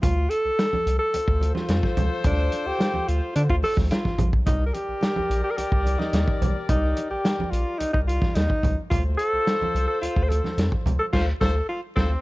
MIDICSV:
0, 0, Header, 1, 5, 480
1, 0, Start_track
1, 0, Tempo, 555042
1, 28, Time_signature, 4, 2, 24, 8
1, 10561, End_track
2, 0, Start_track
2, 0, Title_t, "Horn section"
2, 0, Program_c, 0, 61
2, 979, Note_on_c, 0, 65, 102
2, 979, Note_on_c, 0, 69, 94
2, 983, Note_on_c, 0, 72, 113
2, 3588, Note_off_c, 0, 65, 0
2, 3588, Note_off_c, 0, 69, 0
2, 3590, Note_off_c, 0, 72, 0
2, 3861, Note_on_c, 0, 70, 91
2, 3862, Note_on_c, 0, 67, 89
2, 3863, Note_on_c, 0, 74, 102
2, 7430, Note_off_c, 0, 70, 0
2, 7431, Note_off_c, 0, 67, 0
2, 7431, Note_off_c, 0, 74, 0
2, 7705, Note_on_c, 0, 65, 83
2, 7705, Note_on_c, 0, 69, 93
2, 7707, Note_on_c, 0, 72, 103
2, 9593, Note_off_c, 0, 65, 0
2, 9593, Note_off_c, 0, 69, 0
2, 9594, Note_off_c, 0, 72, 0
2, 9623, Note_on_c, 0, 65, 106
2, 9624, Note_on_c, 0, 72, 102
2, 9625, Note_on_c, 0, 69, 104
2, 9748, Note_off_c, 0, 65, 0
2, 9748, Note_off_c, 0, 72, 0
2, 9749, Note_off_c, 0, 69, 0
2, 9862, Note_on_c, 0, 65, 103
2, 9862, Note_on_c, 0, 69, 102
2, 9864, Note_on_c, 0, 72, 114
2, 9986, Note_off_c, 0, 65, 0
2, 9987, Note_off_c, 0, 69, 0
2, 9988, Note_off_c, 0, 72, 0
2, 10347, Note_on_c, 0, 69, 105
2, 10349, Note_on_c, 0, 72, 95
2, 10350, Note_on_c, 0, 65, 107
2, 10470, Note_off_c, 0, 69, 0
2, 10472, Note_off_c, 0, 65, 0
2, 10472, Note_off_c, 0, 72, 0
2, 10561, End_track
3, 0, Start_track
3, 0, Title_t, "Alto saxophone"
3, 0, Program_c, 1, 65
3, 19, Note_on_c, 1, 65, 110
3, 258, Note_on_c, 1, 69, 127
3, 271, Note_off_c, 1, 65, 0
3, 850, Note_off_c, 1, 69, 0
3, 855, Note_on_c, 1, 69, 106
3, 1307, Note_off_c, 1, 69, 0
3, 1336, Note_on_c, 1, 65, 77
3, 1676, Note_off_c, 1, 65, 0
3, 1952, Note_on_c, 1, 62, 94
3, 2308, Note_on_c, 1, 67, 105
3, 2321, Note_off_c, 1, 62, 0
3, 2667, Note_on_c, 1, 65, 88
3, 2680, Note_off_c, 1, 67, 0
3, 2899, Note_off_c, 1, 65, 0
3, 2904, Note_on_c, 1, 62, 98
3, 2959, Note_off_c, 1, 62, 0
3, 3026, Note_on_c, 1, 65, 92
3, 3080, Note_off_c, 1, 65, 0
3, 3144, Note_on_c, 1, 69, 105
3, 3253, Note_off_c, 1, 69, 0
3, 3379, Note_on_c, 1, 65, 97
3, 3717, Note_off_c, 1, 65, 0
3, 3859, Note_on_c, 1, 63, 91
3, 4027, Note_off_c, 1, 63, 0
3, 4033, Note_on_c, 1, 70, 72
3, 4096, Note_on_c, 1, 67, 112
3, 4109, Note_off_c, 1, 70, 0
3, 4696, Note_off_c, 1, 67, 0
3, 4701, Note_on_c, 1, 67, 94
3, 4760, Note_on_c, 1, 70, 76
3, 4773, Note_off_c, 1, 67, 0
3, 4815, Note_on_c, 1, 67, 103
3, 4828, Note_off_c, 1, 70, 0
3, 5179, Note_on_c, 1, 63, 82
3, 5192, Note_off_c, 1, 67, 0
3, 5543, Note_off_c, 1, 63, 0
3, 5788, Note_on_c, 1, 63, 92
3, 6122, Note_off_c, 1, 63, 0
3, 6142, Note_on_c, 1, 67, 85
3, 6494, Note_on_c, 1, 65, 87
3, 6507, Note_off_c, 1, 67, 0
3, 6733, Note_on_c, 1, 63, 99
3, 6746, Note_off_c, 1, 65, 0
3, 6854, Note_off_c, 1, 63, 0
3, 6860, Note_on_c, 1, 63, 83
3, 6915, Note_off_c, 1, 63, 0
3, 6982, Note_on_c, 1, 65, 92
3, 7220, Note_on_c, 1, 63, 105
3, 7233, Note_off_c, 1, 65, 0
3, 7584, Note_off_c, 1, 63, 0
3, 7697, Note_on_c, 1, 65, 98
3, 7808, Note_off_c, 1, 65, 0
3, 7934, Note_on_c, 1, 69, 122
3, 8507, Note_off_c, 1, 69, 0
3, 8538, Note_on_c, 1, 69, 94
3, 8654, Note_off_c, 1, 69, 0
3, 8660, Note_on_c, 1, 65, 103
3, 8846, Note_on_c, 1, 72, 74
3, 8859, Note_off_c, 1, 65, 0
3, 8898, Note_on_c, 1, 69, 98
3, 8911, Note_off_c, 1, 72, 0
3, 9270, Note_off_c, 1, 69, 0
3, 9504, Note_on_c, 1, 69, 90
3, 9559, Note_off_c, 1, 69, 0
3, 9623, Note_on_c, 1, 65, 104
3, 9732, Note_off_c, 1, 65, 0
3, 9865, Note_on_c, 1, 69, 97
3, 10090, Note_off_c, 1, 69, 0
3, 10108, Note_on_c, 1, 65, 82
3, 10216, Note_off_c, 1, 65, 0
3, 10346, Note_on_c, 1, 60, 102
3, 10561, Note_off_c, 1, 60, 0
3, 10561, End_track
4, 0, Start_track
4, 0, Title_t, "Analog synth bass"
4, 0, Program_c, 2, 38
4, 26, Note_on_c, 2, 38, 101
4, 235, Note_off_c, 2, 38, 0
4, 388, Note_on_c, 2, 36, 44
4, 436, Note_off_c, 2, 36, 0
4, 627, Note_on_c, 2, 36, 44
4, 675, Note_off_c, 2, 36, 0
4, 747, Note_on_c, 2, 36, 107
4, 851, Note_off_c, 2, 36, 0
4, 988, Note_on_c, 2, 38, 50
4, 1036, Note_off_c, 2, 38, 0
4, 1104, Note_on_c, 2, 38, 91
4, 1314, Note_off_c, 2, 38, 0
4, 1461, Note_on_c, 2, 41, 88
4, 1567, Note_off_c, 2, 41, 0
4, 1705, Note_on_c, 2, 37, 89
4, 1810, Note_off_c, 2, 37, 0
4, 1941, Note_on_c, 2, 38, 109
4, 2152, Note_off_c, 2, 38, 0
4, 2301, Note_on_c, 2, 38, 42
4, 2351, Note_off_c, 2, 38, 0
4, 2547, Note_on_c, 2, 38, 47
4, 2595, Note_off_c, 2, 38, 0
4, 2668, Note_on_c, 2, 38, 99
4, 2771, Note_off_c, 2, 38, 0
4, 2903, Note_on_c, 2, 50, 97
4, 3009, Note_off_c, 2, 50, 0
4, 3023, Note_on_c, 2, 38, 91
4, 3129, Note_off_c, 2, 38, 0
4, 3261, Note_on_c, 2, 38, 83
4, 3367, Note_off_c, 2, 38, 0
4, 3504, Note_on_c, 2, 33, 92
4, 3609, Note_off_c, 2, 33, 0
4, 3620, Note_on_c, 2, 34, 101
4, 3727, Note_off_c, 2, 34, 0
4, 3744, Note_on_c, 2, 35, 90
4, 3849, Note_off_c, 2, 35, 0
4, 3863, Note_on_c, 2, 36, 103
4, 4073, Note_off_c, 2, 36, 0
4, 4222, Note_on_c, 2, 34, 42
4, 4271, Note_off_c, 2, 34, 0
4, 4465, Note_on_c, 2, 34, 51
4, 4513, Note_off_c, 2, 34, 0
4, 4580, Note_on_c, 2, 34, 91
4, 4687, Note_off_c, 2, 34, 0
4, 4824, Note_on_c, 2, 36, 45
4, 4873, Note_off_c, 2, 36, 0
4, 4945, Note_on_c, 2, 36, 104
4, 5154, Note_off_c, 2, 36, 0
4, 5302, Note_on_c, 2, 39, 105
4, 5408, Note_off_c, 2, 39, 0
4, 5545, Note_on_c, 2, 35, 90
4, 5650, Note_off_c, 2, 35, 0
4, 5786, Note_on_c, 2, 36, 107
4, 5995, Note_off_c, 2, 36, 0
4, 6146, Note_on_c, 2, 34, 41
4, 6195, Note_off_c, 2, 34, 0
4, 6386, Note_on_c, 2, 34, 45
4, 6434, Note_off_c, 2, 34, 0
4, 6504, Note_on_c, 2, 34, 97
4, 6609, Note_off_c, 2, 34, 0
4, 6748, Note_on_c, 2, 36, 50
4, 6796, Note_off_c, 2, 36, 0
4, 6867, Note_on_c, 2, 36, 93
4, 7076, Note_off_c, 2, 36, 0
4, 7227, Note_on_c, 2, 39, 80
4, 7331, Note_off_c, 2, 39, 0
4, 7465, Note_on_c, 2, 37, 93
4, 7570, Note_off_c, 2, 37, 0
4, 7707, Note_on_c, 2, 38, 103
4, 7916, Note_off_c, 2, 38, 0
4, 8068, Note_on_c, 2, 36, 47
4, 8116, Note_off_c, 2, 36, 0
4, 8309, Note_on_c, 2, 36, 46
4, 8357, Note_off_c, 2, 36, 0
4, 8427, Note_on_c, 2, 36, 106
4, 8532, Note_off_c, 2, 36, 0
4, 8668, Note_on_c, 2, 38, 50
4, 8716, Note_off_c, 2, 38, 0
4, 8789, Note_on_c, 2, 38, 90
4, 8997, Note_off_c, 2, 38, 0
4, 9146, Note_on_c, 2, 41, 89
4, 9251, Note_off_c, 2, 41, 0
4, 9389, Note_on_c, 2, 37, 94
4, 9493, Note_off_c, 2, 37, 0
4, 9630, Note_on_c, 2, 38, 97
4, 9793, Note_off_c, 2, 38, 0
4, 9871, Note_on_c, 2, 38, 113
4, 10033, Note_off_c, 2, 38, 0
4, 10349, Note_on_c, 2, 38, 106
4, 10513, Note_off_c, 2, 38, 0
4, 10561, End_track
5, 0, Start_track
5, 0, Title_t, "Drums"
5, 24, Note_on_c, 9, 42, 106
5, 26, Note_on_c, 9, 36, 119
5, 33, Note_on_c, 9, 62, 40
5, 33, Note_on_c, 9, 64, 82
5, 111, Note_off_c, 9, 42, 0
5, 113, Note_off_c, 9, 36, 0
5, 119, Note_off_c, 9, 62, 0
5, 119, Note_off_c, 9, 64, 0
5, 264, Note_on_c, 9, 42, 70
5, 351, Note_off_c, 9, 42, 0
5, 510, Note_on_c, 9, 38, 113
5, 512, Note_on_c, 9, 42, 81
5, 596, Note_off_c, 9, 38, 0
5, 599, Note_off_c, 9, 42, 0
5, 631, Note_on_c, 9, 63, 83
5, 718, Note_off_c, 9, 63, 0
5, 750, Note_on_c, 9, 42, 72
5, 836, Note_off_c, 9, 42, 0
5, 983, Note_on_c, 9, 42, 108
5, 985, Note_on_c, 9, 62, 35
5, 1070, Note_off_c, 9, 42, 0
5, 1072, Note_off_c, 9, 62, 0
5, 1104, Note_on_c, 9, 36, 102
5, 1191, Note_off_c, 9, 36, 0
5, 1222, Note_on_c, 9, 62, 44
5, 1232, Note_on_c, 9, 42, 73
5, 1309, Note_off_c, 9, 62, 0
5, 1318, Note_off_c, 9, 42, 0
5, 1339, Note_on_c, 9, 63, 80
5, 1351, Note_on_c, 9, 38, 35
5, 1425, Note_off_c, 9, 63, 0
5, 1438, Note_off_c, 9, 38, 0
5, 1456, Note_on_c, 9, 42, 96
5, 1469, Note_on_c, 9, 38, 127
5, 1542, Note_off_c, 9, 42, 0
5, 1555, Note_off_c, 9, 38, 0
5, 1582, Note_on_c, 9, 63, 54
5, 1584, Note_on_c, 9, 36, 89
5, 1589, Note_on_c, 9, 38, 36
5, 1668, Note_off_c, 9, 63, 0
5, 1670, Note_off_c, 9, 36, 0
5, 1675, Note_off_c, 9, 38, 0
5, 1702, Note_on_c, 9, 42, 71
5, 1705, Note_on_c, 9, 62, 39
5, 1705, Note_on_c, 9, 63, 88
5, 1705, Note_on_c, 9, 64, 89
5, 1788, Note_off_c, 9, 42, 0
5, 1791, Note_off_c, 9, 62, 0
5, 1791, Note_off_c, 9, 63, 0
5, 1791, Note_off_c, 9, 64, 0
5, 1937, Note_on_c, 9, 42, 104
5, 1941, Note_on_c, 9, 36, 123
5, 1945, Note_on_c, 9, 64, 86
5, 2023, Note_off_c, 9, 42, 0
5, 2028, Note_off_c, 9, 36, 0
5, 2032, Note_off_c, 9, 64, 0
5, 2178, Note_on_c, 9, 42, 78
5, 2186, Note_on_c, 9, 62, 33
5, 2265, Note_off_c, 9, 42, 0
5, 2273, Note_off_c, 9, 62, 0
5, 2411, Note_on_c, 9, 62, 31
5, 2425, Note_on_c, 9, 38, 124
5, 2427, Note_on_c, 9, 42, 76
5, 2497, Note_off_c, 9, 62, 0
5, 2511, Note_off_c, 9, 38, 0
5, 2514, Note_off_c, 9, 42, 0
5, 2540, Note_on_c, 9, 63, 77
5, 2627, Note_off_c, 9, 63, 0
5, 2666, Note_on_c, 9, 42, 69
5, 2752, Note_off_c, 9, 42, 0
5, 2901, Note_on_c, 9, 42, 96
5, 2901, Note_on_c, 9, 62, 36
5, 2988, Note_off_c, 9, 42, 0
5, 2988, Note_off_c, 9, 62, 0
5, 3023, Note_on_c, 9, 36, 86
5, 3109, Note_off_c, 9, 36, 0
5, 3140, Note_on_c, 9, 62, 43
5, 3149, Note_on_c, 9, 46, 75
5, 3226, Note_off_c, 9, 62, 0
5, 3235, Note_off_c, 9, 46, 0
5, 3258, Note_on_c, 9, 63, 74
5, 3262, Note_on_c, 9, 36, 96
5, 3271, Note_on_c, 9, 38, 37
5, 3345, Note_off_c, 9, 63, 0
5, 3348, Note_off_c, 9, 36, 0
5, 3358, Note_off_c, 9, 38, 0
5, 3379, Note_on_c, 9, 42, 98
5, 3392, Note_on_c, 9, 38, 127
5, 3466, Note_off_c, 9, 42, 0
5, 3478, Note_off_c, 9, 38, 0
5, 3500, Note_on_c, 9, 63, 51
5, 3504, Note_on_c, 9, 36, 88
5, 3510, Note_on_c, 9, 38, 37
5, 3586, Note_off_c, 9, 63, 0
5, 3591, Note_off_c, 9, 36, 0
5, 3596, Note_off_c, 9, 38, 0
5, 3618, Note_on_c, 9, 62, 40
5, 3618, Note_on_c, 9, 63, 88
5, 3618, Note_on_c, 9, 64, 84
5, 3621, Note_on_c, 9, 36, 96
5, 3625, Note_on_c, 9, 42, 64
5, 3704, Note_off_c, 9, 62, 0
5, 3704, Note_off_c, 9, 63, 0
5, 3704, Note_off_c, 9, 64, 0
5, 3707, Note_off_c, 9, 36, 0
5, 3712, Note_off_c, 9, 42, 0
5, 3746, Note_on_c, 9, 36, 95
5, 3832, Note_off_c, 9, 36, 0
5, 3861, Note_on_c, 9, 42, 103
5, 3863, Note_on_c, 9, 36, 120
5, 3868, Note_on_c, 9, 62, 42
5, 3868, Note_on_c, 9, 64, 93
5, 3947, Note_off_c, 9, 42, 0
5, 3950, Note_off_c, 9, 36, 0
5, 3955, Note_off_c, 9, 62, 0
5, 3955, Note_off_c, 9, 64, 0
5, 4102, Note_on_c, 9, 42, 71
5, 4110, Note_on_c, 9, 62, 35
5, 4188, Note_off_c, 9, 42, 0
5, 4196, Note_off_c, 9, 62, 0
5, 4334, Note_on_c, 9, 62, 32
5, 4347, Note_on_c, 9, 38, 107
5, 4349, Note_on_c, 9, 42, 80
5, 4421, Note_off_c, 9, 62, 0
5, 4433, Note_off_c, 9, 38, 0
5, 4436, Note_off_c, 9, 42, 0
5, 4463, Note_on_c, 9, 63, 84
5, 4549, Note_off_c, 9, 63, 0
5, 4590, Note_on_c, 9, 42, 76
5, 4593, Note_on_c, 9, 62, 34
5, 4676, Note_off_c, 9, 42, 0
5, 4679, Note_off_c, 9, 62, 0
5, 4824, Note_on_c, 9, 42, 97
5, 4825, Note_on_c, 9, 62, 38
5, 4911, Note_off_c, 9, 42, 0
5, 4911, Note_off_c, 9, 62, 0
5, 4946, Note_on_c, 9, 36, 98
5, 5032, Note_off_c, 9, 36, 0
5, 5067, Note_on_c, 9, 62, 39
5, 5072, Note_on_c, 9, 42, 68
5, 5153, Note_off_c, 9, 62, 0
5, 5159, Note_off_c, 9, 42, 0
5, 5184, Note_on_c, 9, 63, 73
5, 5194, Note_on_c, 9, 38, 37
5, 5270, Note_off_c, 9, 63, 0
5, 5281, Note_off_c, 9, 38, 0
5, 5301, Note_on_c, 9, 42, 97
5, 5304, Note_on_c, 9, 62, 40
5, 5314, Note_on_c, 9, 38, 114
5, 5388, Note_off_c, 9, 42, 0
5, 5391, Note_off_c, 9, 62, 0
5, 5400, Note_off_c, 9, 38, 0
5, 5427, Note_on_c, 9, 36, 96
5, 5428, Note_on_c, 9, 63, 50
5, 5514, Note_off_c, 9, 36, 0
5, 5515, Note_off_c, 9, 63, 0
5, 5550, Note_on_c, 9, 63, 93
5, 5550, Note_on_c, 9, 64, 93
5, 5551, Note_on_c, 9, 42, 66
5, 5636, Note_off_c, 9, 63, 0
5, 5636, Note_off_c, 9, 64, 0
5, 5637, Note_off_c, 9, 42, 0
5, 5783, Note_on_c, 9, 42, 96
5, 5786, Note_on_c, 9, 36, 122
5, 5794, Note_on_c, 9, 64, 86
5, 5869, Note_off_c, 9, 42, 0
5, 5872, Note_off_c, 9, 36, 0
5, 5881, Note_off_c, 9, 64, 0
5, 6023, Note_on_c, 9, 42, 82
5, 6036, Note_on_c, 9, 62, 37
5, 6110, Note_off_c, 9, 42, 0
5, 6123, Note_off_c, 9, 62, 0
5, 6264, Note_on_c, 9, 62, 29
5, 6269, Note_on_c, 9, 38, 112
5, 6272, Note_on_c, 9, 42, 76
5, 6350, Note_off_c, 9, 62, 0
5, 6356, Note_off_c, 9, 38, 0
5, 6359, Note_off_c, 9, 42, 0
5, 6400, Note_on_c, 9, 63, 79
5, 6486, Note_off_c, 9, 63, 0
5, 6512, Note_on_c, 9, 42, 72
5, 6599, Note_off_c, 9, 42, 0
5, 6747, Note_on_c, 9, 42, 99
5, 6753, Note_on_c, 9, 62, 35
5, 6834, Note_off_c, 9, 42, 0
5, 6840, Note_off_c, 9, 62, 0
5, 6868, Note_on_c, 9, 36, 102
5, 6955, Note_off_c, 9, 36, 0
5, 6997, Note_on_c, 9, 42, 68
5, 7083, Note_off_c, 9, 42, 0
5, 7106, Note_on_c, 9, 36, 97
5, 7106, Note_on_c, 9, 63, 72
5, 7114, Note_on_c, 9, 38, 37
5, 7192, Note_off_c, 9, 36, 0
5, 7193, Note_off_c, 9, 63, 0
5, 7200, Note_off_c, 9, 38, 0
5, 7222, Note_on_c, 9, 42, 98
5, 7235, Note_on_c, 9, 38, 119
5, 7309, Note_off_c, 9, 42, 0
5, 7321, Note_off_c, 9, 38, 0
5, 7349, Note_on_c, 9, 36, 90
5, 7351, Note_on_c, 9, 63, 47
5, 7435, Note_off_c, 9, 36, 0
5, 7437, Note_off_c, 9, 63, 0
5, 7465, Note_on_c, 9, 36, 89
5, 7468, Note_on_c, 9, 62, 41
5, 7468, Note_on_c, 9, 63, 80
5, 7468, Note_on_c, 9, 64, 93
5, 7473, Note_on_c, 9, 42, 70
5, 7552, Note_off_c, 9, 36, 0
5, 7555, Note_off_c, 9, 62, 0
5, 7555, Note_off_c, 9, 63, 0
5, 7555, Note_off_c, 9, 64, 0
5, 7560, Note_off_c, 9, 42, 0
5, 7708, Note_on_c, 9, 36, 119
5, 7708, Note_on_c, 9, 42, 107
5, 7719, Note_on_c, 9, 62, 40
5, 7719, Note_on_c, 9, 64, 87
5, 7795, Note_off_c, 9, 36, 0
5, 7795, Note_off_c, 9, 42, 0
5, 7805, Note_off_c, 9, 62, 0
5, 7805, Note_off_c, 9, 64, 0
5, 7947, Note_on_c, 9, 42, 72
5, 8033, Note_off_c, 9, 42, 0
5, 8186, Note_on_c, 9, 62, 29
5, 8192, Note_on_c, 9, 38, 108
5, 8194, Note_on_c, 9, 42, 80
5, 8272, Note_off_c, 9, 62, 0
5, 8278, Note_off_c, 9, 38, 0
5, 8281, Note_off_c, 9, 42, 0
5, 8322, Note_on_c, 9, 63, 88
5, 8409, Note_off_c, 9, 63, 0
5, 8437, Note_on_c, 9, 42, 71
5, 8449, Note_on_c, 9, 62, 34
5, 8524, Note_off_c, 9, 42, 0
5, 8535, Note_off_c, 9, 62, 0
5, 8672, Note_on_c, 9, 42, 104
5, 8758, Note_off_c, 9, 42, 0
5, 8790, Note_on_c, 9, 36, 92
5, 8876, Note_off_c, 9, 36, 0
5, 8911, Note_on_c, 9, 62, 44
5, 8920, Note_on_c, 9, 42, 76
5, 8998, Note_off_c, 9, 62, 0
5, 9006, Note_off_c, 9, 42, 0
5, 9030, Note_on_c, 9, 63, 76
5, 9039, Note_on_c, 9, 38, 37
5, 9117, Note_off_c, 9, 63, 0
5, 9125, Note_off_c, 9, 38, 0
5, 9148, Note_on_c, 9, 42, 88
5, 9148, Note_on_c, 9, 62, 41
5, 9161, Note_on_c, 9, 38, 119
5, 9234, Note_off_c, 9, 62, 0
5, 9235, Note_off_c, 9, 42, 0
5, 9248, Note_off_c, 9, 38, 0
5, 9270, Note_on_c, 9, 36, 94
5, 9273, Note_on_c, 9, 63, 54
5, 9357, Note_off_c, 9, 36, 0
5, 9359, Note_off_c, 9, 63, 0
5, 9390, Note_on_c, 9, 63, 80
5, 9390, Note_on_c, 9, 64, 94
5, 9397, Note_on_c, 9, 42, 64
5, 9477, Note_off_c, 9, 63, 0
5, 9477, Note_off_c, 9, 64, 0
5, 9484, Note_off_c, 9, 42, 0
5, 9629, Note_on_c, 9, 36, 118
5, 9631, Note_on_c, 9, 49, 83
5, 9638, Note_on_c, 9, 38, 112
5, 9716, Note_off_c, 9, 36, 0
5, 9718, Note_off_c, 9, 49, 0
5, 9725, Note_off_c, 9, 38, 0
5, 9870, Note_on_c, 9, 36, 114
5, 9879, Note_on_c, 9, 38, 103
5, 9956, Note_off_c, 9, 36, 0
5, 9965, Note_off_c, 9, 38, 0
5, 10349, Note_on_c, 9, 36, 118
5, 10357, Note_on_c, 9, 38, 104
5, 10436, Note_off_c, 9, 36, 0
5, 10443, Note_off_c, 9, 38, 0
5, 10561, End_track
0, 0, End_of_file